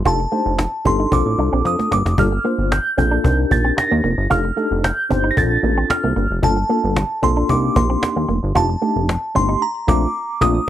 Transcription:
0.05 F1 D4 D#4 F4 G4 A4 A5, cajon bass
0.20 muted clean electric guitar stroke
0.32 A3 D4 D#4 G4 C5, cajon slap
0.46 F1
0.58 muted clean electric guitar stroke, cajon slap
0.85 G1 C4 D4 D#4 G4 A4 C6, cajon bass
0.99 D#4, cajon slap
1.11 A#1 C4 D4 F4 A4 D6, muted clean electric guitar stroke, cajon bass
1.26 A1
1.38 C2 D4, cajon slap
1.53 A#1 C4
1.64 F2 D#6, muted clean electric guitar stroke, cajon slap
1.79 A3, cajon slap
1.91 G1 A#3 D6, cajon slap
2.06 F1, cajon slap
2.17 G1 G3 A#3 D4 F4 A4 F6, cajon bass
2.32 muted clean electric guitar stroke
2.44 A#3 D4 F4 C5, cajon slap
2.59 G1
2.71 G6, muted clean electric guitar stroke, cajon slap
2.97 A#1 A#3 C4 D4 F4 A4 G6, cajon bass
3.11 D4
3.24 C2 D4 D#4 G4 A#4, muted clean electric guitar stroke, cajon bass
3.51 A#1 A#3 A6, cajon bass
3.65 C4
3.77 A#6, muted clean electric guitar stroke, cajon slap
3.91 D#2 A#3
4.04 F1 A#3, cajon slap
4.18 G1
4.30 F1 D4 D#4 F4 G4 A4 F6, cajon bass
4.45 muted clean electric guitar stroke
4.56 A3 D4 D#4 G4 A4, cajon slap
4.71 F1
4.84 G6, muted clean electric guitar stroke, cajon slap
5.10 G1 C4 D4 D#4 G4 C5, cajon bass
5.24 D#4
5.31 A#6
5.36 A#1 C4 D4 F4 A4 A6, muted clean electric guitar stroke, cajon bass
5.63 A1 A#3, cajon slap
5.78 C4
5.90 F6, muted clean electric guitar stroke, cajon slap
6.04 C2 A#3
6.16 G1 A#3, cajon slap
6.31 F1
6.42 G1 G3 A#3 D4 F4 A4 A5, cajon bass
6.57 muted clean electric guitar stroke
6.69 A#3 D4 F4 A4, cajon slap
6.84 G1
6.96 muted clean electric guitar stroke, cajon slap
7.22 A#1 A#3 C4 D4 F4 A4 C6, cajon bass
7.37 D4
7.49 C2 A#3 D4 D#4 G4 D6, muted clean electric guitar stroke, cajon bass
7.76 A#1 A#3 C6, cajon bass
7.90 C4
8.02 muted clean electric guitar stroke, cajon slap
8.16 D#2 A#3
8.29 F1 A#3, cajon slap
8.43 G1
8.55 F1 A3 D4 D#4 F4 G4 A5, cajon bass
8.69 muted clean electric guitar stroke
8.82 A3 D4 D#4 G4, cajon slap
8.96 F1
9.09 muted clean electric guitar stroke, cajon slap
9.35 G1 A3 C4 D4 D#4 G4 C6, cajon bass
9.49 D#4
9.62 A#5
9.88 A#1 A3 C4 D4 F4 D6, cajon bass, cajon slap
10.41 A#1 A3 C4 D4 F4 D#6, cajon bass, cajon slap

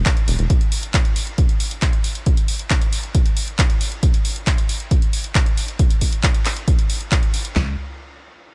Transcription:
0.06 kick, clap, closed hi-hat
0.17 closed hi-hat
0.28 E1, open hi-hat
0.39 E1, closed hi-hat
0.50 kick, closed hi-hat
0.61 closed hi-hat
0.72 open hi-hat
0.83 closed hi-hat
0.94 kick, clap, closed hi-hat
1.05 closed hi-hat
1.16 open hi-hat
1.27 closed hi-hat
1.38 kick, closed hi-hat
1.49 closed hi-hat
1.60 open hi-hat
1.71 closed hi-hat
1.82 kick, clap, closed hi-hat
1.93 closed hi-hat
2.04 open hi-hat
2.15 closed hi-hat
2.26 kick, closed hi-hat
2.37 closed hi-hat
2.48 open hi-hat
2.59 closed hi-hat
2.70 kick, clap, closed hi-hat
2.81 closed hi-hat
2.93 open hi-hat
3.03 closed hi-hat
3.15 kick, closed hi-hat
3.26 closed hi-hat
3.37 open hi-hat
3.48 closed hi-hat
3.59 kick, clap, closed hi-hat
3.70 closed hi-hat
3.81 open hi-hat
3.92 closed hi-hat
4.03 kick, closed hi-hat
4.14 closed hi-hat
4.25 open hi-hat
4.36 closed hi-hat
4.47 kick, clap, closed hi-hat
4.58 closed hi-hat
4.69 open hi-hat
4.80 closed hi-hat
4.91 kick, closed hi-hat
5.02 closed hi-hat
5.13 open hi-hat
5.24 closed hi-hat
5.35 kick, clap, closed hi-hat
5.46 closed hi-hat
5.57 open hi-hat
5.68 closed hi-hat
5.79 kick, closed hi-hat
5.90 closed hi-hat
6.01 kick, open hi-hat
6.13 closed hi-hat
6.23 kick, clap, closed hi-hat
6.34 closed hi-hat
6.45 clap, open hi-hat
6.57 closed hi-hat
6.68 kick, closed hi-hat
6.79 closed hi-hat
6.90 open hi-hat
7.01 closed hi-hat
7.12 kick, clap, closed hi-hat
7.23 closed hi-hat
7.34 open hi-hat
7.45 closed hi-hat
7.56 C#2, snare, clap, floor tom

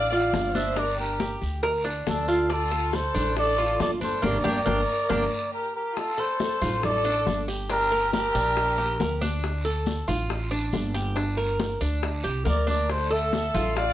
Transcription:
Already playing: A1 D4 D5 F5
0.12 F4 D5 F5, high bongo, high conga
0.33 G1, high bongo, low bongo, high conga, short guiro, maracas
0.55 D4 C5 E5, high bongo, high conga, short guiro, maracas
0.76 D4 A#4 D5, high bongo, high conga, long guiro, maracas
0.98 G4 A#4, high conga
1.20 G4, high bongo, high conga, short guiro, maracas
1.41 D2, high bongo, high conga, short guiro, maracas
1.63 A#4, high bongo, high conga, long guiro, maracas
1.84 D4, high bongo, high conga, maracas
2.06 D2 D4 A4, high bongo, low bongo, high conga, short guiro, maracas
2.28 F4, high bongo, short guiro, maracas
2.50 F4 A4 D5, high bongo, high conga, long guiro, maracas
2.71 A4, high bongo, high conga, maracas
2.93 A4 C5, high bongo, high conga, short guiro, maracas
3.14 A1 D4, low conga, short guiro, maracas
3.36 A4 D5, high bongo, high conga, long guiro, maracas
3.58 F4, high bongo, high conga, maracas
3.80 G1 A4 D5, high bongo, low bongo, high conga, short guiro, maracas
4.01 D4 A4 C5, high bongo, high conga, short guiro, maracas
4.22 G1 A#3 D4 G4 A#4 D5, low bongo, high conga, long guiro, maracas
4.44 G1 A#3 D4 G4, low bongo, high conga, long guiro, maracas
4.66 G1 A#3 D4 G4, low bongo, high conga, long guiro, maracas
5.09 G1 A#3 D4 G4, low bongo, high conga, long guiro, maracas
5.53 G4 A#4
5.75 G4 A#4
5.97 F4 A4, high bongo, high conga, long guiro, maracas
6.18 A4 C5, high conga, maracas
6.40 high bongo, high conga, short guiro, maracas
6.62 A1 F4, high bongo, high conga, low conga, short guiro, maracas
6.83 A4 D5, high bongo, high conga, low conga, long guiro, maracas
7.05 D4, high bongo, high conga
7.27 G1, high bongo, low bongo, high conga, short guiro, maracas
7.48 G4, high bongo, short guiro, maracas
7.70 D4 G4 A#4, high bongo, high conga, long guiro, maracas
7.92 A#4, high conga, maracas
8.13 G4 A#4, high bongo, high conga, short guiro, maracas
8.35 A#1 D4, high bongo, high conga, short guiro, maracas
8.57 high bongo, high conga, long guiro, maracas
8.78 G4, high bongo, high conga, maracas
9.00 D2 A#4, high bongo, low bongo, high conga, short guiro, maracas
9.21 D4, high bongo, high conga, short guiro, maracas
9.43 high bongo, high conga, long guiro, maracas
9.65 A4, high conga, maracas
9.86 high bongo, high conga, short guiro, maracas
10.08 A1 F4, high bongo, high conga, low conga, short guiro, maracas
10.30 high bongo, high conga, long guiro, maracas
10.51 D4, high bongo, high conga
10.73 G1, high bongo, low bongo, high conga, short guiro, maracas
10.94 G4, high bongo, short guiro, maracas
11.16 D4, high bongo, high conga, long guiro, maracas
11.37 A#4, high conga
11.59 high bongo, high conga, short guiro, maracas
11.81 D2 D4, high bongo, high conga, short guiro, maracas
12.03 high bongo, high conga, long guiro, maracas
12.24 C2 G4, high bongo, high conga, maracas
12.45 D2 A#4 D5, high bongo, low bongo, high conga, short guiro, maracas
12.67 D4 A#4 D5, high bongo, high conga, short guiro, maracas
12.90 A4 C5, high bongo, high conga, long guiro, maracas
13.11 A4 E5, high conga
13.33 high bongo, high conga, short guiro, maracas
13.54 A1 F4, high bongo, high conga, low conga, short guiro, maracas
13.76 D5 F5, high bongo, high conga, long guiro, maracas

